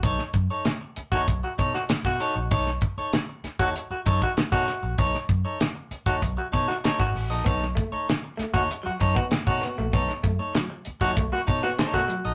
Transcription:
<<
  \new Staff \with { instrumentName = "Clean electric guitar" } { \time 4/4 \key b \mixolydian \tempo 4 = 97 <dis' a' cis''>16 r8 <dis' a' cis''>16 r8. <dis' a' cis''>16 r8 <dis' a' cis''>16 r8. <dis' a' cis''>16 r16 | <dis' a' cis''>16 r8 <dis' a' cis''>16 r8. <dis' a' cis''>16 r8 <dis' a' cis''>16 r8 <dis' a' cis''>16 r8 | <dis' a' cis''>16 r8 <dis' a' cis''>16 r8. <dis' a' cis''>16 r8 <dis' a' cis''>16 r16 <dis' a' cis''>16 r8 <dis' a' dis''>16 | <dis' a' cis''>16 r8 <dis' a' cis''>16 r8. <dis' a' cis''>16 r8 <dis' a' cis''>16 r8 <dis' a' cis''>16 r8 |
<dis' a' cis''>16 r8 <dis' a' cis''>16 r8. <dis' a' cis''>16 r8 <dis' a' cis''>16 r16 <dis' a' cis''>16 r8 <dis' a' dis''>16 | }
  \new Staff \with { instrumentName = "Tenor saxophone" } { \time 4/4 \key b \mixolydian r4. r16 fis'16 r16 fis'16 r16 fis'16 r16 fis'8. | r4. r16 fis'16 r16 fis'16 r16 fis'16 r16 fis'8. | r4. r16 fis'16 r16 fis'16 r16 fis'16 r16 fis'8. | r4. r16 fis'16 r16 fis'16 r16 fis'16 r16 fis'8. |
r4. r16 fis'16 r16 fis'16 r16 fis'16 r16 fis'8. | }
  \new Staff \with { instrumentName = "Clean electric guitar" } { \time 4/4 \key b \mixolydian r1 | r1 | r1 | b16 r16 a16 r8. a16 r8 fis16 r16 b16 r8 b16 a16 |
b16 r16 a16 r16 fis16 r8 fis16 a16 r8 b16 r16 a16 fis16 r16 | }
  \new Staff \with { instrumentName = "Fingered electric bass" } { \clef bass \time 4/4 \key b \mixolydian b,,16 r16 fis,16 r4 dis,16 b,,16 r16 b,16 r8 b,16 r16 ais,,16 | b,,8 r4 r16 dis,16 r8 fis,16 r8 b,16 r16 ais,,16 | b,,16 r16 fis,16 r4 dis,16 b,,16 r16 b,16 r8 gis,,16 a,,16 ais,,16 | b,,8 r4 r16 dis,16 r8 fis,16 r8 b,16 r16 ais,,16 |
b,,16 r16 fis,16 r4 dis,16 b,,16 r16 b,16 r8 b,16 r16 ais,,16 | }
  \new DrumStaff \with { instrumentName = "Drums" } \drummode { \time 4/4 <hh bd>16 sn16 <hh bd>8 <hh sn>8 hh16 <bd sn>16 <hh bd>8 <hh bd>16 sn16 <hh sn>16 <bd sn>16 hh8 | <hh bd>16 sn16 <hh bd>8 <hh sn>8 <hh sn>16 bd16 hh8 <hh bd>16 bd16 <hh sn>16 bd16 <hh sn>8 | <hh bd>16 sn16 <hh bd>8 <hh sn>8 hh16 <bd sn>16 <hh bd>8 <hh bd>16 sn16 <hh sn>16 <bd sn>16 hho8 | <hh bd>16 sn16 <hh bd>8 <hh sn>8 <hh sn>16 bd16 hh8 <hh bd>16 bd16 <hh sn>16 bd16 <hh sn>8 |
<hh bd>16 sn16 <hh bd>8 <hh sn>8 hh16 <bd sn>16 <hh bd>8 <hh bd>16 sn16 <hh sn>16 <bd sn>16 hh8 | }
>>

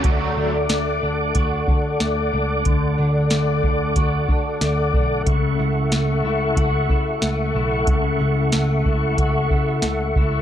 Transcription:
<<
  \new Staff \with { instrumentName = "Tonewheel organ" } { \time 4/4 \key d \major \tempo 4 = 92 << { <d'' d'''>1~ | <d'' d'''>1 | <e'' cis'''>1~ | <e'' cis'''>1 | } \\ { <a' fis''>1~ | <a' fis''>1~ | <a' fis''>1~ | <a' fis''>1 | } >> }
  \new Staff \with { instrumentName = "Clean electric guitar" } { \time 4/4 \key d \major r8 d'8 a8 d'8 fis'8 d'8 a8 d'8 | d8 d'8 a8 d'8 fis'8 d'8 a8 d'8 | cis8 e'8 a8 e'8 fis'8 e'8 a8 e'8 | cis8 e'8 a8 e'8 fis'8 e'8 a8 e'8 | }
  \new Staff \with { instrumentName = "Picked electric bass" } { \clef bass \time 4/4 \key d \major d,8 d,8 d,8 d,8 d,8 d8 d,8 cis,8 | d,8 d,8 d,8 d,8 d,8 d8 d,8 b,,8 | cis,8 cis,8 cis,8 cis,8 cis,8 cis8 cis,8 b,,8 | cis,8 cis,8 cis,8 cis,8 cis,8 cis8 cis,8 cis,8 | }
  \new DrumStaff \with { instrumentName = "Drums" } \drummode { \time 4/4 <hh bd>4 <hh sn>4 <hh bd>8 bd8 <hh sn>4 | <hh bd>4 <hh sn>8 bd8 <hh bd>8 bd8 <hh sn>8 bd8 | <hh bd>4 <hh sn>4 <hh bd>8 bd8 <hh sn>4 | <hh bd>4 <hh sn>8 bd8 <hh bd>8 bd8 <hh sn>8 bd8 | }
>>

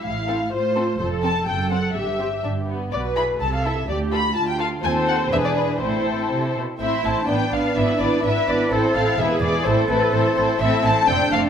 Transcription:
<<
  \new Staff \with { instrumentName = "Violin section" } { \time 2/4 \key f \lydian \tempo 4 = 126 f''4 c''4 | c''8 a''8 g''8 fis''8 | e''4 r4 | \key a \minor d''8 b''8 a''16 f''16 e''8 |
d''8 b''8 a''16 g''16 f''8 | gis''8 fis''8 e''16 d''16 b'8 | a'4. r8 | e''8 a''8 g''8 f''8 |
e''8 d''8 e''8 d''8 | c''8 f''8 e''8 d''8 | c''8 b'8 c''4 | e''8 a''8 g''8 f''8 | }
  \new Staff \with { instrumentName = "Violin section" } { \time 2/4 \key f \lydian r8 <c' a'>8 r8 <c' a'>8 | r8 <c' a'>8 r8 <c' a'>8 | r8 <c' g'>8 d'8 b8 | \key a \minor r8 <e' gis'>8 r8 <e' a'>8 |
r8 <f' a'>8 r8 <f' a'>8 | <bis a'>4 <d' gis'>4 | <c' e'>4. r8 | <e' c''>8 <e' c''>8 <d' b'>8 <d' b'>8 |
<e' b'>8 <e' b'>8 <e' b'>8 <e' b'>8 | <e' a'>8 <e' a'>8 <e' b'>8 <e' b'>8 | <e' a'>8 <e' a'>8 <e' a'>8 <e' a'>8 | <e' a'>8 <e' a'>8 <d' a'>8 <d' a'>8 | }
  \new Staff \with { instrumentName = "Viola section" } { \time 2/4 \key f \lydian e'4 f'4 | a'4 a'4 | g'4. r8 | \key a \minor b'4 a'4 |
g'4 f'4 | bis'4 b'4 | c''4. r8 | <a c'>8 <a c'>8 <b d'>8 <b d'>8 |
<b d'>8 <b d'>8 <b d'>8 <b d'>8 | c'8 c'8 <gis b>8 <gis b>8 | <a c'>8 <a c'>8 <a c'>8 <a c'>8 | <a c'>8 <a c'>8 <a c'>8 <a c'>8 | }
  \new Staff \with { instrumentName = "Cello section" } { \clef bass \time 2/4 \key f \lydian a,4 a,4 | f,4 fis,4 | g,4 g,4 | \key a \minor b,4 c4 |
d,4 d,4 | dis,4 e,4 | a,4 c8 b,8 | e'4 d'4~ |
d'4 b'4 | a'4 gis'4 | a'2 | c'4 d'4 | }
  \new Staff \with { instrumentName = "Double bass section" } { \clef bass \time 2/4 \key f \lydian a,,4 r4 | f,,4 fis,,4 | g,,4 g,,4 | \key a \minor b,,4 c,4 |
d,4 r4 | dis,4 e,,4 | a,,4 r4 | a,,8 a,,8 a,,8 a,,8 |
gis,,8 gis,,8 gis,,8 gis,,8 | a,,8 a,,8 e,,8 e,,8 | a,,8 a,,8 a,,8 a,,8 | a,,8 a,,8 f,,8 f,,8 | }
>>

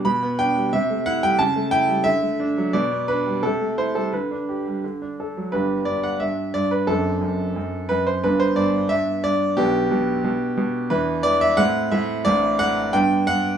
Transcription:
<<
  \new Staff \with { instrumentName = "Grand piano" } { \time 2/4 \key g \major \tempo 4 = 89 << { b''8 g''8 e''8 fis''16 g''16 | a''8 g''8 e''4 | d''8 b'8 a'8 c''16 a'16 | b'4 r4 |
b'8 d''16 fis''16 e''8 d''16 b'16 | a'4. b'16 c''16 | b'16 c''16 d''8 e''8 d''8 | g'2 |
b'8 d''16 e''16 fis''8 e''8 | d''8 fis''8 g''8 fis''8 | } \\ { r2 | r2 | r2 | r2 |
<d' g'>2 | <c' d'>2 | <b d'>2 | <b d'>2 |
<b d'>4 <a c'>4 | <c' d'>4 <b d'>4 | } >> }
  \new Staff \with { instrumentName = "Grand piano" } { \clef bass \time 2/4 \key g \major b,16 b16 d'16 g16 c16 a16 e'16 g16 | cis16 a16 e'16 g16 d16 a16 d'16 fis16 | b,16 b16 d'16 g16 c16 a16 e'16 g16 | d16 d'16 g'16 g16 d16 d'16 a'16 fis16 |
<g,, g,>8 g,8 g,8 g,8 | <fis,, fis,>8 fis,8 fis,8 fis,8 | <g,, g,>8 g,8 g,8 g,8 | <b,, b,>8 b,8 b,8 b,8 |
<e, e>8 e8 a,8 a,8 | <a,, a,>8 a,8 g,8 g,8 | }
>>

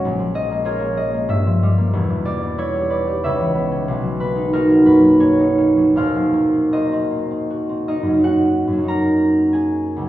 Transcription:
<<
  \new Staff \with { instrumentName = "Harp" } { \time 3/4 \key ees \minor \tempo 4 = 92 << { bes''8 ees''8 des''8 ees''8 fes''4~ | fes''8 d''8 des''8 d''8 fes''4 | r8 b'8 ais'8 b'8 des''4 | f''4 ees''4. ees''8 |
\key fis \major fis''4 ais''4 gis''4 | } \\ { <ais' des''>4 <aes' bes'>2 | r2 <ces'' des''>4~ | <ces'' des''>4 <dis' fis'>2 | <bes' c''>4 <bes' c''>4. ees'8 |
fis'4 ais'4 gis'4 | } >> }
  \new Staff \with { instrumentName = "Harp" } { \time 3/4 \key ees \minor << { <bes,, aes ais des' aes'>16 f16 aes16 bes16 f'16 bes16 aes16 bes16 g,16 f16 g16 bes16 | <e,, e,>16 e16 g16 b16 e'16 g'16 b'16 g'16 des,16 fes16 ces'16 des'16 | b,,16 fis16 ais16 dis'16 ais16 fis16 fis,16 fis16 ais16 dis'16 ais16 fis16 | <ees,, ees,>16 ges16 bes16 c'16 ges'16 c'16 bes16 c'16 ges'16 c'16 bes16 ges16~ |
\key fis \major ges2. | } \\ { r2. | r2. | r2. | r2. |
<fis, fis ais dis'>4 <fis, fis ais dis'>2 | } >> }
>>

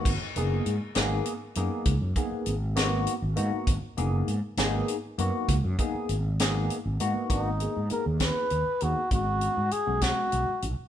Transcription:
<<
  \new Staff \with { instrumentName = "Trumpet" } { \time 6/8 \key gis \minor \tempo 4. = 66 r2. | r2. | r2. | r2. |
dis'4 ais'8 b'4 fis'8 | fis'4 gis'8 fis'4 r8 | }
  \new Staff \with { instrumentName = "Tine electric piano" } { \time 6/8 \key gis \minor r8 <ais b dis' gis'>8 r8 <ais b dis' gis'>8 r8 <ais b dis' gis'>8 | r8 <ais b dis' gis'>8 r8 <ais b dis' fis'>8 r8 <ais b dis' fis'>8 | r8 <ais b dis' gis'>8 r8 <ais b dis' gis'>8 r8 <ais b dis' fis'>8 | r8 <ais b dis' gis'>8 r8 <ais b dis' gis'>8 r8 <ais b dis' fis'>8 |
<ais b dis' fis'>16 r16 <ais b dis' gis'>16 r16 <ais b dis' gis'>4 r8 <ais b dis' gis'>16 r16 | <gis b cis' fis'>8. r8 <gis b cis' fis'>4 r8. | }
  \new Staff \with { instrumentName = "Fretless electric bass" } { \clef bass \time 6/8 \key gis \minor gis,,16 r16 fis,,8 gis,16 r16 gis,,8 r8 fis,16 r16 | cis,16 fis,16 r8 gis,,4~ gis,,16 gis,,16 gis,16 r16 | gis,,16 r16 fis,,8 gis,16 r16 gis,,8 r8 fis,16 r16 | cis,16 fis,16 r8 gis,,4~ gis,,16 gis,,16 gis,16 r16 |
gis,,8. gis,16 r16 dis,8 r16 dis,16 r16 dis,16 r16 | gis,,8. gis,16 r16 b,,8 r16 b,,16 r16 b,,16 r16 | }
  \new DrumStaff \with { instrumentName = "Drums" } \drummode { \time 6/8 <cymc hh bd>8 hh8 hh8 <hh sn>8 hh8 hh8 | <hh bd>8 <hh bd>8 hh8 <hh sn>8 hh8 hh8 | <hh bd>8 hh8 hh8 <hh sn>8 hh8 hh8 | <hh bd>8 <hh bd>8 hh8 <hh sn>8 hh8 hh8 |
<hh bd>8 hh8 hh8 <hh bd sn>8 hh8 hh8 | <hh bd>8 hh8 hh8 <hh bd sn>8 hh8 hh8 | }
>>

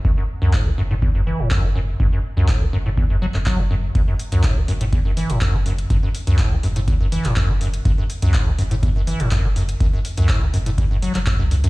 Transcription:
<<
  \new Staff \with { instrumentName = "Acid bass" } { \clef bass \time 4/4 \key fis \minor \tempo 4 = 123 fis,16 fis,16 r16 fis,16 a,16 fis16 fis,16 a,16 e,16 fis,16 e16 a,16 fis,16 fis16 fis,16 r16 | fis,16 fis,16 r16 fis,16 a,16 fis16 fis,16 a,16 e,16 fis,16 fis16 fis,16 fis16 fis,16 fis,16 r16 | fis,16 fis,16 r16 fis,16 a,16 fis16 fis,16 a,16 e,16 fis,16 e16 a,16 fis,16 fis16 fis,16 r16 | fis,16 fis,16 r16 fis,16 a,16 fis16 fis,16 a,16 e,16 fis,16 e16 a,16 fis,16 fis16 fis,16 r16 |
fis,16 fis,16 r16 fis,16 a,16 fis16 fis,16 a,16 e,16 fis,16 e16 a,16 fis,16 fis16 fis,16 r16 | fis,16 fis,16 r16 fis,16 a,16 fis16 fis,16 a,16 e,16 fis,16 fis16 fis16 fis,16 fis,16 fis,16 fis,16 | }
  \new Staff \with { instrumentName = "Sub bass" } { \clef bass \time 4/4 \key fis \minor fis,,16 r8 cis,8. fis,,8. fis,,16 r16 fis,,16 r16 fis,,8. | fis,,16 r8 cis,8. fis,,8. fis,,16 r16 fis,,16 r16 fis,,8. | fis,,16 r8 cis,8. fis,,8. fis,,16 r16 fis,,16 r16 fis,,8. | fis,,16 r8 cis,8. fis,,8. fis,,16 r16 fis,,16 r16 fis,,8. |
fis,,16 r8 cis,8. fis,,8. fis,,16 r16 fis,,16 r16 fis,,8. | fis,,16 r8 cis,8. fis,,8. fis,,16 r16 fis,,16 r16 cis,8. | }
  \new DrumStaff \with { instrumentName = "Drums" } \drummode { \time 4/4 bd4 <hc bd>4 bd4 <hc bd>4 | bd4 <hc bd>4 bd8. hc16 <hc bd>4 | <hh bd>8 hho16 hh16 <hc hh bd>8 hho16 hh16 <hh bd>8 hho16 hh16 <hc hh bd>8 hho16 hh16 | <hh bd>8 hho16 hh16 <hc hh bd>8 hho16 hh16 <hh bd>8 hho16 <hc hh>16 <hc hh bd>8 hho16 hh16 |
<hh bd>8 hho16 hh16 <hc hh bd>8 hho16 hh16 <hh bd>8 hho16 hh16 <hc hh bd>8 hho16 hh16 | <hh bd>8 hho16 hh16 <hc hh bd>8 hho16 hh16 <hh bd>8 hho16 <hc hh>16 <hc hh bd>8 hho16 hh16 | }
>>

